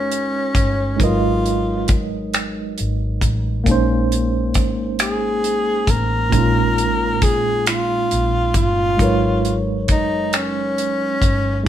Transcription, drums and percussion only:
0.12 closed hi-hat
0.55 kick, closed hi-hat
1.00 kick, closed hi-hat
1.46 closed hi-hat
1.88 kick, closed hi-hat
2.34 finger snap, closed hi-hat
2.78 closed hi-hat
3.21 kick, closed hi-hat
3.66 kick, closed hi-hat
4.12 closed hi-hat
4.54 kick, closed hi-hat
4.99 finger snap, closed hi-hat
5.44 closed hi-hat
5.87 kick, closed hi-hat
6.32 kick, closed hi-hat
6.78 closed hi-hat
7.22 kick, closed hi-hat
7.66 finger snap, closed hi-hat
8.11 closed hi-hat
8.54 kick, closed hi-hat
8.99 kick, closed hi-hat
9.45 closed hi-hat
9.88 kick, closed hi-hat
10.33 finger snap, closed hi-hat
10.78 closed hi-hat
11.22 kick, closed hi-hat

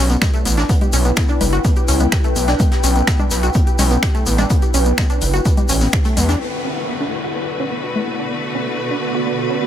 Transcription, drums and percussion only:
0.10 closed hi-hat, shaker
0.22 finger snap, kick, snare, closed hi-hat, low conga, shaker
0.34 closed hi-hat, shaker
0.45 closed hi-hat, open hi-hat, shaker
0.57 snare, closed hi-hat, shaker
0.69 kick, closed hi-hat, shaker
0.81 closed hi-hat, low conga, shaker
0.93 closed hi-hat, open hi-hat, shaker
1.05 closed hi-hat, shaker
1.17 finger snap, kick, snare, closed hi-hat, shaker
1.28 shaker
1.41 closed hi-hat, open hi-hat, low conga, shaker
1.53 closed hi-hat, shaker
1.64 kick, closed hi-hat, shaker
1.76 closed hi-hat, shaker
1.88 closed hi-hat, open hi-hat, shaker
2.00 closed hi-hat, low conga, shaker
2.12 finger snap, kick, snare, closed hi-hat, shaker
2.24 closed hi-hat, shaker
2.36 closed hi-hat, open hi-hat, shaker
2.48 snare, closed hi-hat, shaker
2.59 kick, closed hi-hat, low conga, shaker
2.72 snare, closed hi-hat, shaker
2.83 snare, closed hi-hat, open hi-hat, shaker
2.96 closed hi-hat, shaker
3.07 finger snap, kick, snare, closed hi-hat, shaker
3.19 low conga, shaker
3.31 snare, closed hi-hat, open hi-hat, shaker
3.43 closed hi-hat, shaker
3.54 kick, closed hi-hat, shaker
3.67 closed hi-hat, shaker
3.78 snare, open hi-hat, low conga, shaker
3.91 closed hi-hat, shaker
4.03 finger snap, kick, snare, closed hi-hat, shaker
4.15 closed hi-hat, shaker
4.26 closed hi-hat, open hi-hat, shaker
4.38 snare, closed hi-hat, low conga, shaker
4.50 kick, closed hi-hat, shaker
4.62 closed hi-hat, shaker
4.74 closed hi-hat, open hi-hat, shaker
4.85 closed hi-hat, shaker
4.98 finger snap, kick, snare, closed hi-hat, low conga, shaker
5.10 closed hi-hat, shaker
5.21 closed hi-hat, open hi-hat, shaker
5.34 closed hi-hat, shaker
5.45 kick, closed hi-hat, shaker
5.57 closed hi-hat, low conga, shaker
5.69 closed hi-hat, open hi-hat, shaker
5.80 snare, open hi-hat, shaker
5.93 finger snap, kick, snare, closed hi-hat, shaker
6.05 closed hi-hat, shaker
6.17 snare, open hi-hat, low conga, shaker
6.29 snare, closed hi-hat, shaker

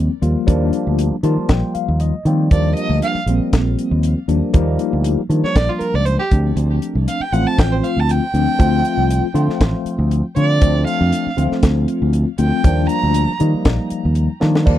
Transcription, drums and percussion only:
0.23 closed hi-hat
0.48 kick, closed hi-hat
0.73 closed hi-hat
0.99 closed hi-hat
1.23 closed hi-hat
1.49 kick, snare, closed hi-hat
1.75 closed hi-hat
2.00 closed hi-hat
2.26 closed hi-hat
2.51 kick, closed hi-hat
2.77 closed hi-hat
3.02 closed hi-hat
3.27 closed hi-hat
3.53 kick, snare, closed hi-hat
3.79 closed hi-hat
4.03 closed hi-hat
4.29 closed hi-hat
4.54 kick, closed hi-hat
4.79 closed hi-hat
5.04 closed hi-hat
5.30 closed hi-hat
5.45 snare
5.56 kick, snare, closed hi-hat
5.81 closed hi-hat
6.06 closed hi-hat
6.31 kick, closed hi-hat
6.57 closed hi-hat
6.82 closed hi-hat
7.08 closed hi-hat
7.33 closed hi-hat
7.58 kick, snare, closed hi-hat
7.84 closed hi-hat
8.09 closed hi-hat
8.35 closed hi-hat
8.60 kick, closed hi-hat
8.85 closed hi-hat
9.10 closed hi-hat
9.36 closed hi-hat
9.50 snare
9.61 kick, snare, closed hi-hat
9.86 closed hi-hat
10.11 closed hi-hat
10.36 closed hi-hat
10.61 kick, closed hi-hat
10.87 closed hi-hat
11.12 closed hi-hat
11.38 closed hi-hat
11.52 snare
11.63 kick, snare, closed hi-hat
11.88 closed hi-hat
12.13 closed hi-hat
12.38 closed hi-hat
12.64 kick, closed hi-hat
12.89 closed hi-hat
13.14 closed hi-hat
13.40 closed hi-hat
13.65 kick, snare, closed hi-hat
13.90 closed hi-hat
14.15 closed hi-hat
14.41 snare
14.55 snare
14.67 kick, crash

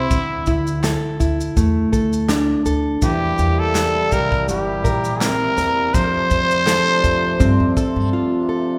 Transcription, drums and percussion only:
0.11 kick, shaker
0.46 kick, shaker
0.67 shaker
0.83 snare, clap, shaker
1.20 kick, shaker
1.41 shaker
1.57 kick, shaker
1.93 kick, shaker
2.13 shaker
2.29 snare, clap, shaker
2.66 shaker
3.02 kick, shaker
3.38 shaker
3.75 snare, clap, shaker
4.12 kick, shaker
4.32 kick
4.49 shaker
4.85 kick, shaker
5.04 shaker
5.21 snare, clap, shaker
5.58 snare, shaker
5.94 kick, shaker
6.31 kick, shaker
6.51 shaker
6.67 snare, clap, shaker
7.04 kick, shaker
7.40 kick, shaker
7.77 kick, shaker

